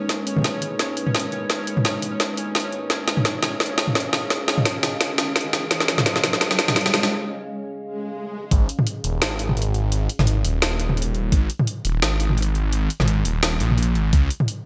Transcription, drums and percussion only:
0.09 kick medium
0.09 snare medium
0.09 closed hi-hat medium
0.27 closed hi-hat medium
0.37 mid tom medium
0.39 mid tom medium
0.42 kick medium
0.42 snare medium
0.42 closed hi-hat medium
0.42 mid tom soft
0.62 closed hi-hat medium
0.79 kick loud
0.79 snare medium
0.79 closed hi-hat medium
0.97 closed hi-hat medium
1.07 mid tom medium
1.15 kick loud
1.15 snare medium
1.15 closed hi-hat soft
1.20 closed hi-hat medium
1.32 closed hi-hat soft
1.50 kick medium
1.50 snare medium
1.50 closed hi-hat medium
1.67 closed hi-hat medium
1.77 mid tom medium
1.85 kick medium
1.85 snare medium
1.85 closed hi-hat medium
2.02 closed hi-hat medium
2.20 kick loud
2.20 snare medium
2.20 closed hi-hat medium
2.37 closed hi-hat medium
2.55 kick loud
2.55 snare medium
2.55 closed hi-hat soft
2.60 closed hi-hat medium
2.72 closed hi-hat soft
2.90 kick loud
2.90 snare medium
2.90 closed hi-hat medium
3.08 snare medium
3.08 closed hi-hat medium
3.17 mid tom medium
3.25 kick medium
3.25 snare medium
3.25 closed hi-hat medium
3.43 snare medium
3.43 closed hi-hat medium
3.60 kick loud
3.60 snare medium
3.60 closed hi-hat soft
3.63 closed hi-hat soft
3.66 closed hi-hat medium
3.78 snare medium
3.78 closed hi-hat medium
3.88 mid tom medium
3.95 kick loud
3.95 snare medium
3.95 closed hi-hat soft
4.00 closed hi-hat medium
4.13 snare medium
4.13 closed hi-hat soft
4.30 kick loud
4.30 snare medium
4.30 closed hi-hat medium
4.48 snare medium
4.48 closed hi-hat medium
4.58 mid tom medium
4.65 kick loud
4.65 snare medium
4.65 closed hi-hat medium
4.83 snare medium
4.83 closed hi-hat medium
5.01 kick loud
5.01 snare medium
5.01 closed hi-hat medium
5.18 snare medium
5.18 closed hi-hat medium
5.36 kick loud
5.36 snare medium
5.36 closed hi-hat soft
5.41 closed hi-hat medium
5.53 snare medium
5.53 closed hi-hat soft
5.71 kick loud
5.71 snare medium
5.71 closed hi-hat medium
5.80 snare medium
5.88 snare medium
5.88 closed hi-hat medium
5.98 snare medium
5.98 mid tom medium
6.06 kick loud
6.06 snare loud
6.06 closed hi-hat medium
6.16 snare medium
6.24 snare loud
6.24 closed hi-hat medium
6.33 snare medium
6.41 kick loud
6.41 snare loud
6.41 closed hi-hat medium
6.51 snare medium
6.59 snare loud
6.59 closed hi-hat medium
6.68 snare medium
6.68 mid tom medium
6.76 kick loud
6.76 snare loud
6.76 closed hi-hat soft
6.81 closed hi-hat medium
6.86 snare medium
6.94 snare loud
6.94 closed hi-hat soft
7.03 snare medium
8.51 kick loud
8.51 closed hi-hat medium
8.69 closed hi-hat medium
8.79 mid tom medium
8.87 closed hi-hat medium
9.04 closed hi-hat medium
9.22 snare loud
9.22 closed hi-hat medium
9.39 closed hi-hat medium
9.49 mid tom medium
9.57 closed hi-hat medium
9.62 closed hi-hat medium
9.74 closed hi-hat soft
9.92 closed hi-hat medium
10.09 closed hi-hat medium
10.19 snare soft
10.19 mid tom medium
10.27 closed hi-hat medium
10.45 closed hi-hat medium
10.62 snare loud
10.62 closed hi-hat medium
10.80 closed hi-hat medium
10.89 mid tom medium
10.97 closed hi-hat medium
11.02 closed hi-hat medium
11.15 closed hi-hat soft
11.32 kick loud
11.32 closed hi-hat medium
11.50 closed hi-hat medium
11.60 mid tom medium
11.67 closed hi-hat medium
11.85 closed hi-hat medium
12.02 snare loud
12.02 closed hi-hat medium
12.20 closed hi-hat medium
12.30 mid tom medium
12.38 closed hi-hat medium
12.42 closed hi-hat medium
12.55 closed hi-hat soft
12.73 closed hi-hat medium
12.90 closed hi-hat medium
13.00 snare soft
13.00 mid tom medium
13.08 closed hi-hat medium
13.25 closed hi-hat medium
13.43 snare loud
13.43 closed hi-hat medium
13.60 closed hi-hat medium
13.70 mid tom medium
13.78 closed hi-hat soft
13.83 closed hi-hat medium
13.95 closed hi-hat soft
14.13 kick loud
14.13 closed hi-hat medium
14.30 closed hi-hat medium
14.40 mid tom medium
14.48 closed hi-hat medium

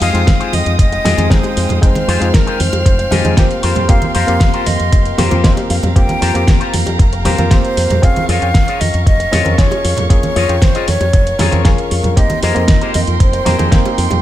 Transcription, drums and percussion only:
0.02 open hi-hat loud
0.15 closed hi-hat soft
0.27 kick loud
0.27 snare loud
0.27 closed hi-hat loud
0.41 closed hi-hat soft
0.53 open hi-hat loud
0.53 high conga medium
0.66 closed hi-hat soft
0.79 kick loud
0.79 closed hi-hat loud
0.92 closed hi-hat soft
1.05 snare medium
1.05 open hi-hat loud
1.05 high bongo medium
1.05 low conga medium
1.18 closed hi-hat soft
1.18 high conga loud
1.31 kick loud
1.31 snare loud
1.31 closed hi-hat medium
1.43 closed hi-hat soft
1.43 high bongo medium
1.57 open hi-hat loud
1.69 closed hi-hat soft
1.69 high bongo medium
1.69 low conga medium
1.82 kick loud
1.82 closed hi-hat medium
1.95 closed hi-hat soft
1.95 high conga loud
2.09 open hi-hat loud
2.22 closed hi-hat soft
2.34 kick loud
2.34 snare loud
2.34 closed hi-hat medium
2.47 closed hi-hat soft
2.60 open hi-hat loud
2.60 high conga medium
2.73 closed hi-hat soft
2.73 high bongo medium
2.86 kick loud
2.86 closed hi-hat medium
2.99 closed hi-hat soft
3.11 snare medium
3.11 open hi-hat loud
3.11 high bongo medium
3.11 low conga medium
3.25 closed hi-hat soft
3.25 high conga loud
3.37 kick loud
3.37 snare loud
3.37 closed hi-hat medium
3.51 closed hi-hat soft
3.63 open hi-hat loud
3.76 closed hi-hat soft
3.76 low conga medium
3.89 kick loud
3.89 closed hi-hat medium
4.02 closed hi-hat soft
4.02 high conga loud
4.15 open hi-hat loud
4.28 closed hi-hat soft
4.40 kick loud
4.40 snare loud
4.40 closed hi-hat medium
4.54 closed hi-hat soft
4.66 open hi-hat loud
4.66 high conga medium
4.80 closed hi-hat soft
4.92 kick loud
4.92 closed hi-hat medium
5.05 closed hi-hat soft
5.18 snare medium
5.18 open hi-hat loud
5.18 high bongo medium
5.18 low conga medium
5.31 closed hi-hat soft
5.31 high conga loud
5.44 kick loud
5.44 snare loud
5.44 closed hi-hat medium
5.57 closed hi-hat soft
5.57 high bongo medium
5.70 open hi-hat loud
5.83 closed hi-hat soft
5.83 high bongo medium
5.83 low conga medium
5.96 kick loud
5.96 closed hi-hat medium
6.09 closed hi-hat soft
6.09 high conga loud
6.22 open hi-hat loud
6.35 closed hi-hat soft
6.47 kick loud
6.47 snare loud
6.47 closed hi-hat medium
6.61 closed hi-hat soft
6.73 open hi-hat loud
6.73 high conga medium
6.86 closed hi-hat soft
6.86 high bongo medium
6.99 kick loud
6.99 closed hi-hat medium
7.13 closed hi-hat soft
7.25 snare medium
7.25 open hi-hat loud
7.25 high bongo medium
7.25 low conga medium
7.38 closed hi-hat soft
7.38 high conga loud
7.51 kick loud
7.51 snare loud
7.51 closed hi-hat medium
7.65 closed hi-hat soft
7.77 open hi-hat loud
7.90 closed hi-hat soft
7.90 low conga medium
8.03 kick loud
8.03 closed hi-hat medium
8.16 closed hi-hat soft
8.16 high conga loud
8.29 open hi-hat loud
8.42 closed hi-hat soft
8.54 kick loud
8.54 snare loud
8.54 closed hi-hat medium
8.68 closed hi-hat soft
8.81 open hi-hat loud
8.81 high conga medium
8.94 closed hi-hat soft
9.06 kick loud
9.06 closed hi-hat medium
9.20 closed hi-hat soft
9.32 snare medium
9.32 open hi-hat loud
9.32 high bongo medium
9.32 low conga medium
9.45 closed hi-hat soft
9.45 high conga medium
9.58 kick loud
9.58 snare loud
9.58 closed hi-hat medium
9.71 closed hi-hat soft
9.71 high bongo medium
9.85 open hi-hat loud
9.97 closed hi-hat soft
9.97 high bongo medium
9.97 low conga medium
10.10 kick loud
10.10 closed hi-hat medium
10.23 closed hi-hat soft
10.23 high conga medium
10.36 open hi-hat loud
10.49 closed hi-hat soft
10.62 kick loud
10.62 snare loud
10.62 closed hi-hat medium
10.75 closed hi-hat soft
10.88 open hi-hat loud
10.88 high conga medium
11.01 closed hi-hat soft
11.01 high bongo medium
11.13 kick loud
11.13 closed hi-hat medium
11.27 closed hi-hat soft
11.39 snare medium
11.39 open hi-hat loud
11.39 high bongo medium
11.39 low conga medium
11.52 closed hi-hat soft
11.52 high conga loud
11.65 kick loud
11.65 snare loud
11.65 closed hi-hat medium
11.78 closed hi-hat soft
11.91 open hi-hat loud
12.03 closed hi-hat soft
12.03 low conga medium
12.17 kick loud
12.17 closed hi-hat loud
12.30 closed hi-hat soft
12.30 high conga loud
12.43 open hi-hat loud
12.56 closed hi-hat soft
12.68 kick loud
12.68 snare loud
12.68 closed hi-hat medium
12.81 closed hi-hat soft
12.94 open hi-hat loud
12.94 high conga medium
13.07 closed hi-hat soft
13.20 kick loud
13.20 closed hi-hat medium
13.33 closed hi-hat soft
13.46 snare medium
13.46 open hi-hat loud
13.46 high bongo medium
13.46 low conga medium
13.59 closed hi-hat soft
13.59 high conga loud
13.72 kick loud
13.72 snare loud
13.72 closed hi-hat medium
13.85 closed hi-hat soft
13.85 high bongo medium
13.98 open hi-hat loud
14.10 closed hi-hat soft
14.10 high bongo medium
14.10 low conga medium

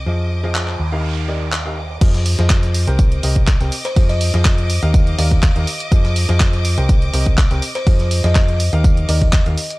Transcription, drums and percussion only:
0.55 clap loud
0.68 clap soft
1.52 clap loud
2.01 kick loud
2.01 closed hi-hat medium
2.01 crash loud
2.01 tambourine medium
2.14 snare medium
2.14 closed hi-hat soft
2.26 open hi-hat loud
2.26 tambourine medium
2.39 snare medium
2.39 closed hi-hat soft
2.50 kick loud
2.50 snare loud
2.50 clap loud
2.50 closed hi-hat medium
2.50 tambourine medium
2.63 snare soft
2.63 closed hi-hat soft
2.75 open hi-hat loud
2.75 tambourine medium
2.87 closed hi-hat soft
2.99 kick loud
2.99 closed hi-hat medium
2.99 tambourine medium
3.12 closed hi-hat soft
3.23 open hi-hat loud
3.23 tambourine medium
3.36 kick medium
3.36 closed hi-hat soft
3.47 kick loud
3.47 snare loud
3.47 clap loud
3.47 closed hi-hat medium
3.47 tambourine medium
3.61 snare soft
3.61 closed hi-hat soft
3.72 open hi-hat loud
3.72 tambourine medium
3.85 snare soft
3.85 closed hi-hat soft
3.96 kick loud
3.96 closed hi-hat medium
3.96 open hi-hat medium
4.09 snare soft
4.09 closed hi-hat soft
4.21 open hi-hat loud
4.21 tambourine medium
4.34 snare medium
4.34 closed hi-hat soft
4.45 kick loud
4.45 snare loud
4.45 clap loud
4.45 closed hi-hat medium
4.45 tambourine medium
4.58 closed hi-hat soft
4.70 open hi-hat loud
4.70 tambourine medium
4.83 closed hi-hat soft
4.94 kick loud
4.94 closed hi-hat medium
4.94 tambourine medium
5.07 closed hi-hat soft
5.18 open hi-hat loud
5.18 tambourine medium
5.31 kick medium
5.31 closed hi-hat soft
5.43 kick loud
5.43 snare loud
5.43 clap loud
5.43 closed hi-hat medium
5.43 tambourine medium
5.56 closed hi-hat soft
5.67 open hi-hat loud
5.67 tambourine medium
5.80 closed hi-hat soft
5.92 kick loud
5.92 closed hi-hat medium
5.92 tambourine medium
6.05 snare medium
6.05 closed hi-hat soft
6.16 open hi-hat loud
6.16 tambourine medium
6.29 snare medium
6.29 closed hi-hat soft
6.40 kick loud
6.40 snare loud
6.40 clap loud
6.40 closed hi-hat medium
6.40 tambourine medium
6.53 snare soft
6.53 closed hi-hat soft
6.65 open hi-hat loud
6.65 tambourine medium
6.78 closed hi-hat soft
6.89 kick loud
6.89 closed hi-hat medium
6.89 tambourine medium
7.02 closed hi-hat soft
7.14 open hi-hat loud
7.14 tambourine medium
7.26 kick medium
7.26 closed hi-hat soft
7.38 kick loud
7.38 snare loud
7.38 clap loud
7.38 closed hi-hat medium
7.38 tambourine medium
7.51 snare soft
7.51 closed hi-hat soft
7.62 open hi-hat loud
7.62 tambourine medium
7.75 snare soft
7.75 closed hi-hat soft
7.87 kick loud
7.87 closed hi-hat medium
7.87 open hi-hat medium
8.00 snare soft
8.00 closed hi-hat soft
8.11 open hi-hat loud
8.11 tambourine medium
8.24 snare medium
8.24 closed hi-hat soft
8.35 kick loud
8.35 snare loud
8.35 clap loud
8.35 closed hi-hat medium
8.35 tambourine medium
8.48 closed hi-hat soft
8.60 open hi-hat loud
8.60 tambourine medium
8.73 closed hi-hat soft
8.84 kick loud
8.84 closed hi-hat medium
8.84 tambourine medium
8.97 closed hi-hat soft
9.09 open hi-hat loud
9.09 tambourine medium
9.22 kick medium
9.22 closed hi-hat soft
9.33 kick loud
9.33 snare loud
9.33 clap loud
9.33 closed hi-hat medium
9.33 tambourine medium
9.46 closed hi-hat soft
9.57 open hi-hat loud
9.57 tambourine medium
9.70 closed hi-hat soft

